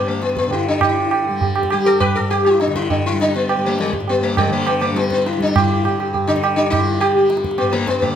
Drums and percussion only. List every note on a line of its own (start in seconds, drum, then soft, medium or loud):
0.22 tabla te medium
0.29 tabla te medium
0.37 tabla ke medium
0.44 tabla te medium
0.51 tabla tin medium
0.51 tabla ge medium
0.81 tabla na loud
0.81 tabla ge loud
1.11 tabla na medium
1.41 tabla tin medium
1.41 tabla ge medium
1.56 tabla na medium
1.63 tabla ke medium
1.71 tabla na medium
1.85 tabla na medium
2.01 tabla na medium
2.01 tabla ge medium
2.16 tabla ge medium
2.31 tabla na medium
2.45 tabla na medium
2.60 tabla te medium
2.68 tabla te medium
2.76 tabla ke medium
2.82 tabla te medium
2.90 tabla tin medium
2.90 tabla ge medium
3.20 tabla te medium
3.35 tabla te medium
3.49 tabla na medium
3.79 tabla te medium
3.86 tabla te medium
3.93 tabla ke medium
4.00 tabla te medium
4.08 tabla tin medium
4.37 tabla na medium
4.37 tabla ge medium
4.52 tabla ge medium
4.67 tabla na medium
4.81 tabla na medium
4.96 tabla te medium
5.04 tabla te medium
5.10 tabla ke medium
5.18 tabla te medium
5.26 tabla te medium
5.33 tabla te medium
5.41 tabla ke medium
5.48 tabla te medium
5.56 tabla na loud
5.56 tabla ge loud
5.85 tabla na medium
6.00 tabla na medium
6.14 tabla tin medium
6.14 tabla ge medium
6.29 tabla na medium
6.36 tabla ke medium
6.44 tabla na medium
6.72 tabla na medium
6.72 tabla ge medium
7.01 tabla na medium
7.30 tabla te medium
7.37 tabla te medium
7.44 tabla ke medium
7.51 tabla te medium
7.58 tabla na medium
7.73 tabla te medium
7.87 tabla ke medium
8.02 tabla tin medium
8.02 tabla ge medium